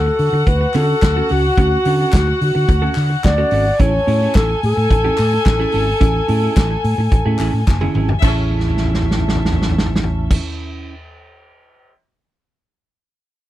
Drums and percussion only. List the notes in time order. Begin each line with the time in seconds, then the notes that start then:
0.19 open hi-hat
0.47 kick, closed hi-hat
0.73 clap, open hi-hat
1.02 kick, snare, clap, closed hi-hat
1.29 open hi-hat
1.57 kick, closed hi-hat
1.85 open hi-hat
2.13 kick, snare, clap, closed hi-hat
2.41 open hi-hat
2.69 kick, closed hi-hat
2.95 clap, open hi-hat
3.24 kick, snare, clap, closed hi-hat
3.51 open hi-hat
3.79 kick, closed hi-hat
4.08 open hi-hat
4.35 kick, snare, clap, closed hi-hat
4.63 open hi-hat
4.91 kick, closed hi-hat
5.17 clap, open hi-hat
5.45 kick, snare, clap, closed hi-hat
5.72 open hi-hat
6.01 kick, closed hi-hat
6.28 open hi-hat
6.57 kick, snare, clap, closed hi-hat
6.84 open hi-hat
7.11 kick, closed hi-hat
7.38 clap, open hi-hat
7.67 kick, snare, clap
7.81 high tom
7.95 mid tom
8.09 floor tom
8.22 kick, clap, crash
8.51 floor tom
8.60 snare
8.68 floor tom
8.77 snare
8.85 floor tom
8.94 snare
9.02 floor tom
9.11 snare
9.19 floor tom
9.28 snare
9.35 floor tom
9.45 snare
9.52 floor tom
9.62 snare
9.69 floor tom
9.78 snare
9.86 floor tom
9.95 snare
10.03 floor tom
10.31 kick, crash